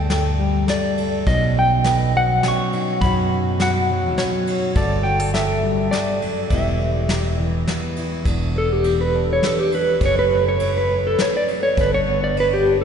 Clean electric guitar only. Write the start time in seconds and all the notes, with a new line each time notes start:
Already playing: G5
0.70 D5
1.27 D#5
1.59 G5
2.17 F#5
2.48 C#6
3.01 B5
3.62 F#5
4.18 C#5
4.77 D5
5.03 G5
5.34 E5
5.91 D5
6.51 E5
7.46 D5
8.58 A4
8.73 G4
9.01 B4
9.33 C#5
9.46 A4
9.60 G4
9.75 B4
10.05 C#5
10.19 B4
10.49 C#5
10.78 B4
11.07 A4
11.22 C#5
11.37 D5
11.63 C#5
11.81 B4
11.94 C#5
12.24 D5
12.40 B4
12.53 G4